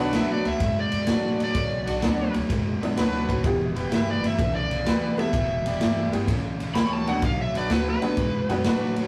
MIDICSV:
0, 0, Header, 1, 7, 480
1, 0, Start_track
1, 0, Key_signature, 2, "minor"
1, 0, Tempo, 472813
1, 1581, Time_signature, 4, 2, 24, 8
1, 9211, End_track
2, 0, Start_track
2, 0, Title_t, "Electric slide guitar"
2, 0, Program_c, 0, 29
2, 165, Note_on_c, 0, 76, 82
2, 308, Note_off_c, 0, 76, 0
2, 324, Note_on_c, 0, 74, 70
2, 468, Note_off_c, 0, 74, 0
2, 472, Note_on_c, 0, 76, 87
2, 777, Note_off_c, 0, 76, 0
2, 816, Note_on_c, 0, 74, 73
2, 1420, Note_off_c, 0, 74, 0
2, 1463, Note_on_c, 0, 74, 84
2, 2374, Note_off_c, 0, 74, 0
2, 4011, Note_on_c, 0, 76, 89
2, 4152, Note_off_c, 0, 76, 0
2, 4163, Note_on_c, 0, 74, 79
2, 4307, Note_off_c, 0, 74, 0
2, 4329, Note_on_c, 0, 76, 87
2, 4618, Note_on_c, 0, 74, 74
2, 4626, Note_off_c, 0, 76, 0
2, 5240, Note_off_c, 0, 74, 0
2, 5283, Note_on_c, 0, 76, 89
2, 6203, Note_off_c, 0, 76, 0
2, 6850, Note_on_c, 0, 83, 109
2, 7010, Note_off_c, 0, 83, 0
2, 7039, Note_on_c, 0, 81, 81
2, 7185, Note_off_c, 0, 81, 0
2, 7194, Note_on_c, 0, 78, 85
2, 7343, Note_off_c, 0, 78, 0
2, 7360, Note_on_c, 0, 77, 87
2, 7506, Note_off_c, 0, 77, 0
2, 7531, Note_on_c, 0, 76, 77
2, 7671, Note_off_c, 0, 76, 0
2, 7688, Note_on_c, 0, 74, 86
2, 7830, Note_off_c, 0, 74, 0
2, 7833, Note_on_c, 0, 71, 99
2, 7982, Note_off_c, 0, 71, 0
2, 8019, Note_on_c, 0, 71, 92
2, 8931, Note_off_c, 0, 71, 0
2, 9211, End_track
3, 0, Start_track
3, 0, Title_t, "Horn section"
3, 0, Program_c, 1, 61
3, 0, Note_on_c, 1, 62, 90
3, 0, Note_on_c, 1, 66, 87
3, 0, Note_on_c, 1, 71, 97
3, 521, Note_off_c, 1, 62, 0
3, 527, Note_off_c, 1, 66, 0
3, 532, Note_off_c, 1, 71, 0
3, 1083, Note_on_c, 1, 62, 70
3, 1093, Note_on_c, 1, 66, 71
3, 1100, Note_on_c, 1, 74, 84
3, 1541, Note_off_c, 1, 62, 0
3, 1546, Note_off_c, 1, 66, 0
3, 1549, Note_off_c, 1, 74, 0
3, 1885, Note_on_c, 1, 62, 77
3, 1897, Note_on_c, 1, 66, 62
3, 1903, Note_on_c, 1, 74, 74
3, 2437, Note_off_c, 1, 62, 0
3, 2443, Note_off_c, 1, 66, 0
3, 2446, Note_off_c, 1, 74, 0
3, 2997, Note_on_c, 1, 62, 84
3, 3006, Note_on_c, 1, 66, 77
3, 3019, Note_on_c, 1, 71, 98
3, 3458, Note_off_c, 1, 62, 0
3, 3462, Note_off_c, 1, 66, 0
3, 3469, Note_off_c, 1, 71, 0
3, 3804, Note_on_c, 1, 64, 77
3, 3817, Note_on_c, 1, 67, 84
3, 3829, Note_on_c, 1, 71, 87
3, 4357, Note_off_c, 1, 64, 0
3, 4363, Note_off_c, 1, 67, 0
3, 4370, Note_off_c, 1, 71, 0
3, 4924, Note_on_c, 1, 64, 74
3, 4935, Note_on_c, 1, 67, 66
3, 4944, Note_on_c, 1, 71, 89
3, 5382, Note_off_c, 1, 64, 0
3, 5387, Note_off_c, 1, 67, 0
3, 5392, Note_off_c, 1, 71, 0
3, 5736, Note_on_c, 1, 64, 71
3, 5741, Note_on_c, 1, 67, 66
3, 5754, Note_on_c, 1, 74, 80
3, 6283, Note_off_c, 1, 64, 0
3, 6286, Note_off_c, 1, 67, 0
3, 6292, Note_off_c, 1, 74, 0
3, 6843, Note_on_c, 1, 64, 74
3, 6852, Note_on_c, 1, 67, 70
3, 6861, Note_on_c, 1, 73, 83
3, 7301, Note_off_c, 1, 64, 0
3, 7305, Note_off_c, 1, 67, 0
3, 7309, Note_off_c, 1, 73, 0
3, 7653, Note_on_c, 1, 62, 75
3, 7660, Note_on_c, 1, 66, 70
3, 7668, Note_on_c, 1, 71, 85
3, 8201, Note_off_c, 1, 62, 0
3, 8204, Note_off_c, 1, 66, 0
3, 8208, Note_off_c, 1, 71, 0
3, 8771, Note_on_c, 1, 62, 91
3, 8780, Note_on_c, 1, 66, 84
3, 8792, Note_on_c, 1, 71, 95
3, 9211, Note_off_c, 1, 62, 0
3, 9211, Note_off_c, 1, 66, 0
3, 9211, Note_off_c, 1, 71, 0
3, 9211, End_track
4, 0, Start_track
4, 0, Title_t, "Honky-tonk piano"
4, 0, Program_c, 2, 3
4, 0, Note_on_c, 2, 50, 85
4, 0, Note_on_c, 2, 54, 75
4, 0, Note_on_c, 2, 59, 77
4, 0, Note_on_c, 2, 62, 69
4, 0, Note_on_c, 2, 66, 89
4, 583, Note_off_c, 2, 62, 0
4, 584, Note_off_c, 2, 50, 0
4, 584, Note_off_c, 2, 54, 0
4, 585, Note_off_c, 2, 59, 0
4, 585, Note_off_c, 2, 66, 0
4, 2054, Note_on_c, 2, 54, 53
4, 2055, Note_on_c, 2, 59, 56
4, 2057, Note_on_c, 2, 50, 59
4, 2061, Note_on_c, 2, 62, 54
4, 2066, Note_on_c, 2, 66, 65
4, 2350, Note_off_c, 2, 54, 0
4, 2350, Note_off_c, 2, 59, 0
4, 2351, Note_off_c, 2, 50, 0
4, 2353, Note_off_c, 2, 62, 0
4, 2356, Note_off_c, 2, 66, 0
4, 2866, Note_on_c, 2, 50, 68
4, 2870, Note_on_c, 2, 54, 65
4, 2871, Note_on_c, 2, 59, 66
4, 2872, Note_on_c, 2, 64, 88
4, 2874, Note_on_c, 2, 62, 68
4, 3006, Note_off_c, 2, 50, 0
4, 3008, Note_off_c, 2, 54, 0
4, 3008, Note_off_c, 2, 59, 0
4, 3008, Note_off_c, 2, 64, 0
4, 3009, Note_off_c, 2, 62, 0
4, 3503, Note_on_c, 2, 64, 60
4, 3504, Note_on_c, 2, 52, 64
4, 3506, Note_on_c, 2, 59, 58
4, 3508, Note_on_c, 2, 55, 66
4, 3508, Note_on_c, 2, 67, 71
4, 4242, Note_off_c, 2, 52, 0
4, 4242, Note_off_c, 2, 64, 0
4, 4243, Note_off_c, 2, 59, 0
4, 4244, Note_off_c, 2, 55, 0
4, 4244, Note_off_c, 2, 67, 0
4, 5246, Note_on_c, 2, 52, 76
4, 5253, Note_on_c, 2, 64, 58
4, 5254, Note_on_c, 2, 55, 56
4, 5255, Note_on_c, 2, 59, 68
4, 5255, Note_on_c, 2, 69, 85
4, 5396, Note_off_c, 2, 52, 0
4, 5399, Note_off_c, 2, 64, 0
4, 5400, Note_off_c, 2, 55, 0
4, 5400, Note_off_c, 2, 59, 0
4, 5400, Note_off_c, 2, 69, 0
4, 6215, Note_on_c, 2, 55, 72
4, 6216, Note_on_c, 2, 52, 71
4, 6220, Note_on_c, 2, 64, 68
4, 6221, Note_on_c, 2, 67, 73
4, 6223, Note_on_c, 2, 59, 71
4, 6360, Note_off_c, 2, 55, 0
4, 6361, Note_off_c, 2, 52, 0
4, 6363, Note_off_c, 2, 64, 0
4, 6363, Note_off_c, 2, 67, 0
4, 6364, Note_off_c, 2, 59, 0
4, 7176, Note_on_c, 2, 50, 57
4, 7181, Note_on_c, 2, 59, 52
4, 7182, Note_on_c, 2, 54, 60
4, 7183, Note_on_c, 2, 62, 59
4, 7186, Note_on_c, 2, 66, 64
4, 7320, Note_off_c, 2, 50, 0
4, 7323, Note_off_c, 2, 54, 0
4, 7323, Note_off_c, 2, 59, 0
4, 7324, Note_off_c, 2, 62, 0
4, 7325, Note_off_c, 2, 66, 0
4, 8136, Note_on_c, 2, 50, 79
4, 8137, Note_on_c, 2, 54, 71
4, 8139, Note_on_c, 2, 62, 72
4, 8144, Note_on_c, 2, 59, 78
4, 8146, Note_on_c, 2, 66, 85
4, 8280, Note_off_c, 2, 50, 0
4, 8280, Note_off_c, 2, 54, 0
4, 8281, Note_off_c, 2, 62, 0
4, 8284, Note_off_c, 2, 59, 0
4, 8285, Note_off_c, 2, 66, 0
4, 8621, Note_on_c, 2, 50, 77
4, 8621, Note_on_c, 2, 59, 80
4, 8622, Note_on_c, 2, 54, 80
4, 8625, Note_on_c, 2, 62, 81
4, 8630, Note_on_c, 2, 66, 95
4, 8762, Note_off_c, 2, 50, 0
4, 8762, Note_off_c, 2, 59, 0
4, 8763, Note_off_c, 2, 54, 0
4, 8764, Note_off_c, 2, 62, 0
4, 8767, Note_off_c, 2, 66, 0
4, 9211, End_track
5, 0, Start_track
5, 0, Title_t, "Overdriven electric guitar"
5, 0, Program_c, 3, 29
5, 0, Note_on_c, 3, 47, 75
5, 0, Note_on_c, 3, 54, 85
5, 120, Note_off_c, 3, 47, 0
5, 126, Note_off_c, 3, 54, 0
5, 132, Note_on_c, 3, 47, 84
5, 143, Note_on_c, 3, 54, 103
5, 429, Note_off_c, 3, 47, 0
5, 434, Note_off_c, 3, 54, 0
5, 457, Note_on_c, 3, 47, 66
5, 460, Note_on_c, 3, 54, 95
5, 582, Note_off_c, 3, 47, 0
5, 594, Note_on_c, 3, 47, 73
5, 595, Note_off_c, 3, 54, 0
5, 599, Note_on_c, 3, 56, 90
5, 900, Note_off_c, 3, 47, 0
5, 902, Note_off_c, 3, 56, 0
5, 929, Note_on_c, 3, 47, 71
5, 934, Note_on_c, 3, 56, 86
5, 1071, Note_off_c, 3, 47, 0
5, 1079, Note_off_c, 3, 56, 0
5, 1083, Note_on_c, 3, 47, 82
5, 1085, Note_on_c, 3, 54, 84
5, 1384, Note_off_c, 3, 47, 0
5, 1385, Note_off_c, 3, 54, 0
5, 1416, Note_on_c, 3, 47, 85
5, 1422, Note_on_c, 3, 54, 92
5, 1558, Note_off_c, 3, 47, 0
5, 1561, Note_off_c, 3, 54, 0
5, 1570, Note_on_c, 3, 47, 90
5, 1573, Note_on_c, 3, 54, 90
5, 1868, Note_off_c, 3, 47, 0
5, 1869, Note_off_c, 3, 54, 0
5, 1887, Note_on_c, 3, 47, 70
5, 1890, Note_on_c, 3, 54, 92
5, 2024, Note_off_c, 3, 54, 0
5, 2025, Note_off_c, 3, 47, 0
5, 2037, Note_on_c, 3, 54, 95
5, 2038, Note_on_c, 3, 47, 86
5, 2341, Note_off_c, 3, 47, 0
5, 2341, Note_off_c, 3, 54, 0
5, 2362, Note_on_c, 3, 54, 88
5, 2367, Note_on_c, 3, 47, 82
5, 2511, Note_off_c, 3, 47, 0
5, 2514, Note_off_c, 3, 54, 0
5, 2523, Note_on_c, 3, 47, 83
5, 2529, Note_on_c, 3, 56, 84
5, 2824, Note_off_c, 3, 47, 0
5, 2827, Note_off_c, 3, 56, 0
5, 2849, Note_on_c, 3, 47, 74
5, 2857, Note_on_c, 3, 56, 79
5, 2997, Note_off_c, 3, 47, 0
5, 3001, Note_off_c, 3, 56, 0
5, 3013, Note_on_c, 3, 47, 76
5, 3014, Note_on_c, 3, 54, 83
5, 3309, Note_off_c, 3, 47, 0
5, 3310, Note_off_c, 3, 54, 0
5, 3336, Note_on_c, 3, 47, 88
5, 3338, Note_on_c, 3, 54, 95
5, 3476, Note_off_c, 3, 47, 0
5, 3482, Note_off_c, 3, 54, 0
5, 3485, Note_on_c, 3, 40, 84
5, 3488, Note_on_c, 3, 47, 86
5, 3785, Note_off_c, 3, 40, 0
5, 3787, Note_off_c, 3, 47, 0
5, 3805, Note_on_c, 3, 40, 74
5, 3809, Note_on_c, 3, 47, 84
5, 3948, Note_off_c, 3, 40, 0
5, 3951, Note_off_c, 3, 47, 0
5, 3960, Note_on_c, 3, 40, 85
5, 3963, Note_on_c, 3, 47, 90
5, 4263, Note_off_c, 3, 40, 0
5, 4264, Note_off_c, 3, 47, 0
5, 4292, Note_on_c, 3, 40, 81
5, 4299, Note_on_c, 3, 47, 85
5, 4439, Note_off_c, 3, 40, 0
5, 4442, Note_off_c, 3, 47, 0
5, 4452, Note_on_c, 3, 40, 82
5, 4456, Note_on_c, 3, 49, 98
5, 4749, Note_off_c, 3, 40, 0
5, 4751, Note_off_c, 3, 49, 0
5, 4773, Note_on_c, 3, 40, 77
5, 4776, Note_on_c, 3, 49, 82
5, 4912, Note_off_c, 3, 40, 0
5, 4921, Note_off_c, 3, 49, 0
5, 4924, Note_on_c, 3, 40, 77
5, 4931, Note_on_c, 3, 47, 100
5, 5225, Note_off_c, 3, 40, 0
5, 5228, Note_off_c, 3, 47, 0
5, 5259, Note_on_c, 3, 40, 80
5, 5262, Note_on_c, 3, 47, 88
5, 5402, Note_off_c, 3, 40, 0
5, 5404, Note_off_c, 3, 47, 0
5, 5425, Note_on_c, 3, 40, 80
5, 5425, Note_on_c, 3, 47, 91
5, 5715, Note_off_c, 3, 40, 0
5, 5715, Note_off_c, 3, 47, 0
5, 5744, Note_on_c, 3, 40, 67
5, 5747, Note_on_c, 3, 47, 81
5, 5882, Note_off_c, 3, 40, 0
5, 5886, Note_off_c, 3, 47, 0
5, 5895, Note_on_c, 3, 40, 84
5, 5898, Note_on_c, 3, 47, 90
5, 6190, Note_off_c, 3, 40, 0
5, 6192, Note_off_c, 3, 47, 0
5, 6216, Note_on_c, 3, 40, 78
5, 6216, Note_on_c, 3, 47, 97
5, 6358, Note_off_c, 3, 40, 0
5, 6360, Note_off_c, 3, 47, 0
5, 6370, Note_on_c, 3, 40, 76
5, 6373, Note_on_c, 3, 49, 97
5, 6668, Note_off_c, 3, 40, 0
5, 6669, Note_off_c, 3, 49, 0
5, 6696, Note_on_c, 3, 40, 86
5, 6706, Note_on_c, 3, 49, 84
5, 6840, Note_off_c, 3, 40, 0
5, 6845, Note_off_c, 3, 49, 0
5, 6857, Note_on_c, 3, 40, 76
5, 6860, Note_on_c, 3, 47, 82
5, 7151, Note_off_c, 3, 40, 0
5, 7152, Note_off_c, 3, 47, 0
5, 7174, Note_on_c, 3, 40, 84
5, 7179, Note_on_c, 3, 47, 94
5, 7319, Note_off_c, 3, 40, 0
5, 7322, Note_off_c, 3, 47, 0
5, 7335, Note_on_c, 3, 47, 76
5, 7336, Note_on_c, 3, 54, 96
5, 7630, Note_off_c, 3, 47, 0
5, 7630, Note_off_c, 3, 54, 0
5, 7651, Note_on_c, 3, 47, 79
5, 7657, Note_on_c, 3, 54, 86
5, 7798, Note_off_c, 3, 47, 0
5, 7801, Note_off_c, 3, 54, 0
5, 7823, Note_on_c, 3, 47, 99
5, 7823, Note_on_c, 3, 54, 102
5, 8114, Note_off_c, 3, 47, 0
5, 8114, Note_off_c, 3, 54, 0
5, 8148, Note_on_c, 3, 47, 88
5, 8150, Note_on_c, 3, 54, 85
5, 8286, Note_off_c, 3, 47, 0
5, 8287, Note_off_c, 3, 54, 0
5, 8307, Note_on_c, 3, 47, 84
5, 8311, Note_on_c, 3, 56, 94
5, 8595, Note_off_c, 3, 47, 0
5, 8597, Note_off_c, 3, 56, 0
5, 8627, Note_on_c, 3, 47, 82
5, 8634, Note_on_c, 3, 56, 87
5, 8765, Note_off_c, 3, 47, 0
5, 8769, Note_off_c, 3, 56, 0
5, 8789, Note_on_c, 3, 47, 74
5, 8794, Note_on_c, 3, 54, 84
5, 9076, Note_off_c, 3, 47, 0
5, 9079, Note_off_c, 3, 54, 0
5, 9124, Note_on_c, 3, 47, 76
5, 9126, Note_on_c, 3, 54, 97
5, 9211, Note_off_c, 3, 47, 0
5, 9211, Note_off_c, 3, 54, 0
5, 9211, End_track
6, 0, Start_track
6, 0, Title_t, "Upright bass"
6, 0, Program_c, 4, 32
6, 0, Note_on_c, 4, 35, 82
6, 121, Note_off_c, 4, 35, 0
6, 132, Note_on_c, 4, 38, 92
6, 431, Note_off_c, 4, 38, 0
6, 456, Note_on_c, 4, 38, 76
6, 602, Note_off_c, 4, 38, 0
6, 609, Note_on_c, 4, 42, 88
6, 909, Note_off_c, 4, 42, 0
6, 934, Note_on_c, 4, 42, 83
6, 1080, Note_off_c, 4, 42, 0
6, 1089, Note_on_c, 4, 45, 91
6, 1534, Note_off_c, 4, 45, 0
6, 1573, Note_on_c, 4, 35, 84
6, 1872, Note_off_c, 4, 35, 0
6, 1891, Note_on_c, 4, 35, 84
6, 2039, Note_off_c, 4, 35, 0
6, 2052, Note_on_c, 4, 38, 96
6, 2351, Note_off_c, 4, 38, 0
6, 2376, Note_on_c, 4, 38, 81
6, 2522, Note_off_c, 4, 38, 0
6, 2537, Note_on_c, 4, 42, 87
6, 2834, Note_off_c, 4, 42, 0
6, 3015, Note_on_c, 4, 38, 85
6, 3457, Note_off_c, 4, 38, 0
6, 3496, Note_on_c, 4, 28, 88
6, 3793, Note_off_c, 4, 28, 0
6, 3819, Note_on_c, 4, 28, 88
6, 3957, Note_off_c, 4, 28, 0
6, 3963, Note_on_c, 4, 31, 90
6, 4266, Note_off_c, 4, 31, 0
6, 4286, Note_on_c, 4, 31, 83
6, 4436, Note_off_c, 4, 31, 0
6, 4450, Note_on_c, 4, 35, 96
6, 4750, Note_off_c, 4, 35, 0
6, 4771, Note_on_c, 4, 35, 86
6, 4919, Note_off_c, 4, 35, 0
6, 4929, Note_on_c, 4, 38, 81
6, 5374, Note_off_c, 4, 38, 0
6, 5407, Note_on_c, 4, 28, 96
6, 5709, Note_off_c, 4, 28, 0
6, 5724, Note_on_c, 4, 28, 89
6, 5875, Note_off_c, 4, 28, 0
6, 5893, Note_on_c, 4, 31, 96
6, 6192, Note_off_c, 4, 31, 0
6, 6217, Note_on_c, 4, 31, 93
6, 6362, Note_off_c, 4, 31, 0
6, 6370, Note_on_c, 4, 35, 101
6, 6670, Note_off_c, 4, 35, 0
6, 6693, Note_on_c, 4, 35, 77
6, 6840, Note_off_c, 4, 35, 0
6, 6848, Note_on_c, 4, 38, 83
6, 7294, Note_off_c, 4, 38, 0
6, 7326, Note_on_c, 4, 35, 85
6, 7627, Note_off_c, 4, 35, 0
6, 7648, Note_on_c, 4, 35, 77
6, 7797, Note_off_c, 4, 35, 0
6, 7808, Note_on_c, 4, 38, 90
6, 8108, Note_off_c, 4, 38, 0
6, 8136, Note_on_c, 4, 38, 86
6, 8281, Note_off_c, 4, 38, 0
6, 8299, Note_on_c, 4, 42, 92
6, 8594, Note_off_c, 4, 42, 0
6, 8625, Note_on_c, 4, 42, 90
6, 8765, Note_off_c, 4, 42, 0
6, 8779, Note_on_c, 4, 45, 81
6, 9211, Note_off_c, 4, 45, 0
6, 9211, End_track
7, 0, Start_track
7, 0, Title_t, "Drums"
7, 130, Note_on_c, 9, 51, 81
7, 134, Note_on_c, 9, 38, 103
7, 231, Note_off_c, 9, 51, 0
7, 235, Note_off_c, 9, 38, 0
7, 459, Note_on_c, 9, 51, 58
7, 561, Note_off_c, 9, 51, 0
7, 610, Note_on_c, 9, 51, 83
7, 613, Note_on_c, 9, 36, 97
7, 712, Note_off_c, 9, 51, 0
7, 714, Note_off_c, 9, 36, 0
7, 931, Note_on_c, 9, 51, 66
7, 1032, Note_off_c, 9, 51, 0
7, 1083, Note_on_c, 9, 51, 88
7, 1087, Note_on_c, 9, 38, 108
7, 1185, Note_off_c, 9, 51, 0
7, 1189, Note_off_c, 9, 38, 0
7, 1423, Note_on_c, 9, 51, 68
7, 1524, Note_off_c, 9, 51, 0
7, 1569, Note_on_c, 9, 51, 93
7, 1573, Note_on_c, 9, 36, 110
7, 1671, Note_off_c, 9, 51, 0
7, 1674, Note_off_c, 9, 36, 0
7, 1902, Note_on_c, 9, 51, 70
7, 2004, Note_off_c, 9, 51, 0
7, 2053, Note_on_c, 9, 51, 74
7, 2057, Note_on_c, 9, 38, 94
7, 2155, Note_off_c, 9, 51, 0
7, 2159, Note_off_c, 9, 38, 0
7, 2378, Note_on_c, 9, 51, 64
7, 2480, Note_off_c, 9, 51, 0
7, 2535, Note_on_c, 9, 36, 97
7, 2537, Note_on_c, 9, 51, 83
7, 2637, Note_off_c, 9, 36, 0
7, 2639, Note_off_c, 9, 51, 0
7, 2872, Note_on_c, 9, 51, 58
7, 2974, Note_off_c, 9, 51, 0
7, 3019, Note_on_c, 9, 51, 90
7, 3023, Note_on_c, 9, 38, 116
7, 3121, Note_off_c, 9, 51, 0
7, 3125, Note_off_c, 9, 38, 0
7, 3338, Note_on_c, 9, 36, 86
7, 3346, Note_on_c, 9, 51, 57
7, 3440, Note_off_c, 9, 36, 0
7, 3447, Note_off_c, 9, 51, 0
7, 3493, Note_on_c, 9, 51, 79
7, 3494, Note_on_c, 9, 36, 115
7, 3594, Note_off_c, 9, 51, 0
7, 3596, Note_off_c, 9, 36, 0
7, 3821, Note_on_c, 9, 51, 59
7, 3922, Note_off_c, 9, 51, 0
7, 3977, Note_on_c, 9, 51, 79
7, 3981, Note_on_c, 9, 38, 102
7, 4079, Note_off_c, 9, 51, 0
7, 4083, Note_off_c, 9, 38, 0
7, 4305, Note_on_c, 9, 51, 60
7, 4309, Note_on_c, 9, 38, 34
7, 4407, Note_off_c, 9, 51, 0
7, 4411, Note_off_c, 9, 38, 0
7, 4453, Note_on_c, 9, 36, 110
7, 4457, Note_on_c, 9, 51, 77
7, 4555, Note_off_c, 9, 36, 0
7, 4559, Note_off_c, 9, 51, 0
7, 4782, Note_on_c, 9, 51, 56
7, 4884, Note_off_c, 9, 51, 0
7, 4938, Note_on_c, 9, 51, 90
7, 4942, Note_on_c, 9, 38, 109
7, 5039, Note_off_c, 9, 51, 0
7, 5043, Note_off_c, 9, 38, 0
7, 5269, Note_on_c, 9, 51, 59
7, 5371, Note_off_c, 9, 51, 0
7, 5413, Note_on_c, 9, 36, 126
7, 5417, Note_on_c, 9, 51, 92
7, 5514, Note_off_c, 9, 36, 0
7, 5518, Note_off_c, 9, 51, 0
7, 5743, Note_on_c, 9, 51, 67
7, 5845, Note_off_c, 9, 51, 0
7, 5896, Note_on_c, 9, 51, 76
7, 5900, Note_on_c, 9, 38, 106
7, 5998, Note_off_c, 9, 51, 0
7, 6002, Note_off_c, 9, 38, 0
7, 6226, Note_on_c, 9, 51, 72
7, 6327, Note_off_c, 9, 51, 0
7, 6371, Note_on_c, 9, 36, 95
7, 6377, Note_on_c, 9, 51, 85
7, 6473, Note_off_c, 9, 36, 0
7, 6479, Note_off_c, 9, 51, 0
7, 6702, Note_on_c, 9, 51, 61
7, 6804, Note_off_c, 9, 51, 0
7, 6854, Note_on_c, 9, 51, 81
7, 6858, Note_on_c, 9, 38, 112
7, 6956, Note_off_c, 9, 51, 0
7, 6960, Note_off_c, 9, 38, 0
7, 7180, Note_on_c, 9, 51, 55
7, 7281, Note_off_c, 9, 51, 0
7, 7331, Note_on_c, 9, 51, 86
7, 7333, Note_on_c, 9, 36, 114
7, 7432, Note_off_c, 9, 51, 0
7, 7434, Note_off_c, 9, 36, 0
7, 7665, Note_on_c, 9, 51, 63
7, 7767, Note_off_c, 9, 51, 0
7, 7815, Note_on_c, 9, 51, 69
7, 7819, Note_on_c, 9, 38, 102
7, 7917, Note_off_c, 9, 51, 0
7, 7921, Note_off_c, 9, 38, 0
7, 8141, Note_on_c, 9, 51, 60
7, 8243, Note_off_c, 9, 51, 0
7, 8293, Note_on_c, 9, 51, 81
7, 8297, Note_on_c, 9, 36, 104
7, 8394, Note_off_c, 9, 51, 0
7, 8398, Note_off_c, 9, 36, 0
7, 8625, Note_on_c, 9, 51, 63
7, 8727, Note_off_c, 9, 51, 0
7, 8775, Note_on_c, 9, 51, 88
7, 8779, Note_on_c, 9, 38, 123
7, 8877, Note_off_c, 9, 51, 0
7, 8881, Note_off_c, 9, 38, 0
7, 9100, Note_on_c, 9, 51, 62
7, 9201, Note_off_c, 9, 51, 0
7, 9211, End_track
0, 0, End_of_file